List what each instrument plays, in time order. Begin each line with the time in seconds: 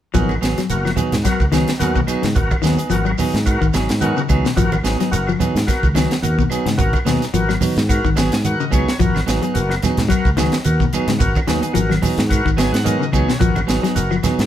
0.14 fingered electric bass G#1, clean electric guitar F3 F#3 B3 D#4 G#4, tonewheel organ B3 F#4 A#4, kick, closed hi-hat, low conga, shekere
0.29 high conga, claves, shekere
0.41 fingered electric bass G#1, clean electric guitar F#3 B3 G#4, snare, closed hi-hat, shekere
0.58 clean electric guitar F#3, snare, closed hi-hat, shekere
0.70 fingered electric bass F#1, tonewheel organ B3 F#4 A#4, closed hi-hat, shekere
0.85 clean electric guitar F3, snare, claves, shekere
0.96 clean electric guitar F#3 B3 D#4 G#4, closed hi-hat, high conga, low conga, shekere
1.12 fingered electric bass G#2, snare, closed hi-hat, low conga, shekere
1.24 clean electric guitar F#3, tonewheel organ B3 F#4 A#4, kick, snare, closed hi-hat, claves, shekere
1.40 fingered electric bass C#2, kick, shekere
1.52 clean electric guitar D#3 F#3 B3 D#4 G#4, snare, closed hi-hat, high conga, claves, shekere
1.68 snare, closed hi-hat, shekere
1.79 fingered electric bass D#2, clean electric guitar F#3 B3 D#4 G#4, tonewheel organ B3 F#4 A#4, closed hi-hat, high conga, shekere
1.96 clean electric guitar B2, kick, shekere
2.07 clean electric guitar F#3 B3 D#4 G#4, muted fingered electric bass stroke, closed hi-hat, claves, shekere
2.22 fingered electric bass G#2, clean electric guitar C#3, snare, closed hi-hat, shekere
2.35 fingered electric bass G#1, tonewheel organ B3 F#4 A#4, kick, closed hi-hat, low conga, shekere
2.51 kick, high conga, claves, shekere
2.62 fingered electric bass D#2, clean electric guitar D#3 F#3 B3 D#4 G#4, snare, closed hi-hat, shekere
2.78 clean electric guitar B3 D#4 G#4, closed hi-hat, shekere
2.90 fingered electric bass G#1, clean electric guitar F3, tonewheel organ B3 F#4 A#4, closed hi-hat, shekere
3.05 clean electric guitar F#3, claves, shekere
3.18 clean electric guitar F#3 B3 D#4 G#4, open hi-hat, high conga, low conga, shekere
3.34 fingered electric bass G#2, snare, closed hi-hat, shekere
3.46 tonewheel organ B3 F#4 A#4, kick, closed hi-hat, claves, shekere
3.61 fingered electric bass G#1, clean electric guitar D#3, kick, shekere
3.73 fingered electric bass G#1, clean electric guitar F#3 D#4 G#4, muted clean electric guitar stroke, snare, closed hi-hat, high conga, claves, shekere
3.89 fingered electric bass G#2, snare, closed hi-hat, shekere
4.00 clean electric guitar F#3 B3 D#4 G#4, tonewheel organ B3 F#4 A#4, closed hi-hat, high conga, shekere
4.17 clean electric guitar C#3, shekere
4.29 fingered electric bass C#2, clean electric guitar F#3 B3 D#4 G#4, kick, closed hi-hat, high conga, claves, shekere
4.45 clean electric guitar B2, snare, shekere
4.56 fingered electric bass G#1, clean electric guitar F3, tonewheel organ B3 F#4 A#4, kick, closed hi-hat, low conga, shekere
4.72 high conga, claves, shekere
4.83 fingered electric bass G#1, clean electric guitar F#3 B3 D#4 G#4, snare, closed hi-hat, shekere
4.99 clean electric guitar F#3 B3 D#4 G#4, snare, closed hi-hat, shekere
5.11 fingered electric bass F#1, tonewheel organ B3 F#4 A#4, closed hi-hat, shekere
5.27 clean electric guitar F3, claves, shekere
5.39 clean electric guitar F#3 B3 D#4 G#4, closed hi-hat, high conga, low conga, shekere
5.55 fingered electric bass G#2, snare, closed hi-hat, shekere
5.66 tonewheel organ B3 F#4 A#4, muted clean electric guitar stroke, kick, snare, closed hi-hat, claves, shekere
5.83 fingered electric bass C#2, kick, high conga, shekere
5.95 clean electric guitar D#3 F#3 B3 D#4 G#4, snare, closed hi-hat, high conga, claves, shekere
6.11 snare, closed hi-hat, shekere
6.22 fingered electric bass D#2, tonewheel organ B3 F#4 A#4, closed hi-hat, high conga, shekere
6.39 clean electric guitar B2, kick, shekere
6.50 clean electric guitar F#3 B3 D#4 G#4, muted fingered electric bass stroke, closed hi-hat, claves, shekere
6.66 fingered electric bass G#2, clean electric guitar C#3, snare, closed hi-hat, shekere
6.78 fingered electric bass G#1, tonewheel organ B3 F#4 A#4, kick, closed hi-hat, low conga, shekere
6.93 kick, high conga, claves, shekere
7.05 fingered electric bass D#2, clean electric guitar B2 F#3 B3 D#4 G#4, snare, closed hi-hat, shekere
7.22 snare, closed hi-hat, shekere
7.33 fingered electric bass G#1, clean electric guitar F3, tonewheel organ B3 F#4 A#4, closed hi-hat, shekere
7.49 clean electric guitar F#3, snare, claves, shekere
7.61 clean electric guitar F#3 B3 D#4, muted clean electric guitar stroke, open hi-hat, high conga, low conga, shekere
7.77 fingered electric bass G#2, snare, closed hi-hat, shekere
7.89 tonewheel organ B3 F#4 A#4, kick, closed hi-hat, claves, shekere
8.04 fingered electric bass G#1, clean electric guitar D#3, kick, high conga, shekere
8.16 fingered electric bass G#1, clean electric guitar F#3 B3 G#4, tonewheel organ G#5, muted clean electric guitar stroke, snare, closed hi-hat, high conga, claves, shekere
8.32 fingered electric bass G#2, snare, closed hi-hat, shekere
8.45 tonewheel organ B3 F#4 A#4 F#5, closed hi-hat, high conga, shekere
8.60 clean electric guitar C#3, tonewheel organ D#5, shekere
8.71 fingered electric bass C#2, clean electric guitar F#3 B3 D#4 G#4, tonewheel organ C#5, kick, closed hi-hat, claves, shekere
8.89 snare, shekere
9.00 fingered electric bass G#1, clean electric guitar F3, tonewheel organ B3 F#4 A#4, kick, closed hi-hat, low conga, shekere
9.15 snare, high conga, claves, shekere
9.26 fingered electric bass G#1, clean electric guitar F#3 B3 D#4 G#4, snare, closed hi-hat, shekere
9.42 clean electric guitar F#3 B3 D#4 G#4, closed hi-hat, shekere
9.54 fingered electric bass F#1, tonewheel organ B3 F#4 A#4, closed hi-hat, shekere
9.70 muted clean electric guitar stroke, snare, claves, shekere
9.82 clean electric guitar F#3 B3 D#4 G#4, snare, closed hi-hat, high conga, low conga, shekere
9.97 fingered electric bass G#2, snare, closed hi-hat, low conga, shekere
10.09 clean electric guitar F#3, tonewheel organ B3 F#4 A#4, kick, closed hi-hat, claves, shekere
10.25 fingered electric bass C#2, kick, shekere
10.37 clean electric guitar D#3 F#3 B3 D#4 G#4, snare, closed hi-hat, high conga, claves, shekere
10.52 snare, closed hi-hat, shekere
10.65 fingered electric bass D#2, tonewheel organ B3 F#4 A#4, closed hi-hat, high conga, shekere
10.80 clean electric guitar B2, kick, shekere
10.93 clean electric guitar F#3 B3 D#4 G#4, muted fingered electric bass stroke, closed hi-hat, high conga, claves, shekere
11.07 fingered electric bass G#2, clean electric guitar C#3, snare, closed hi-hat, shekere
11.19 fingered electric bass G#1, tonewheel organ B3 F#4 A#4, kick, closed hi-hat, low conga, shekere
11.35 kick, high conga, claves, shekere
11.47 fingered electric bass D#2, clean electric guitar D#3 F#3 B3 D#4 G#4, snare, closed hi-hat, shekere
11.62 clean electric guitar B3 D#4 G#4, closed hi-hat, shekere
11.73 fingered electric bass G#1, clean electric guitar F3, tonewheel organ B3 F#4 A#4, closed hi-hat, shekere
11.90 clean electric guitar F#3, snare, high conga, claves, shekere
12.02 clean electric guitar F#3 B3 D#4 G#4, open hi-hat, high conga, low conga, shekere
12.18 fingered electric bass G#2, snare, closed hi-hat, shekere
12.29 tonewheel organ B3 F#4 A#4, kick, closed hi-hat, claves, shekere
12.45 fingered electric bass G#1, clean electric guitar D#3, kick, shekere
12.57 fingered electric bass G#1, clean electric guitar F#3 B3 D#4 G#4, tonewheel organ G#5, snare, closed hi-hat, high conga, claves, shekere
12.72 fingered electric bass G#2, tonewheel organ F#5, snare, closed hi-hat, shekere
12.84 clean electric guitar F#3 B3 D#4 G#4, tonewheel organ B3 F#4 A#4 D#5, closed hi-hat, high conga, shekere
13.00 clean electric guitar C#3, shekere
13.12 fingered electric bass C#2, clean electric guitar F#3 B3 D#4 G#4, tonewheel organ C#5, kick, closed hi-hat, high conga, claves, shekere
13.29 clean electric guitar B2, snare, shekere
13.39 fingered electric bass G#1, clean electric guitar F3, tonewheel organ B3 F#4 A#4, kick, closed hi-hat, low conga, shekere
13.55 high conga, claves, shekere
13.67 fingered electric bass G#1, clean electric guitar F#3 B3 D#4 G#4, snare, closed hi-hat, shekere
13.82 clean electric guitar F#3 B3 D#4 G#4, muted fingered electric bass stroke, snare, closed hi-hat, shekere
13.95 fingered electric bass F#1, tonewheel organ B3 F#4 A#4, closed hi-hat, shekere
14.11 clean electric guitar F3, claves, shekere
14.23 clean electric guitar F#3 B3 D#4 G#4, snare, closed hi-hat, high conga, low conga, shekere
14.39 fingered electric bass G#2, snare, closed hi-hat, shekere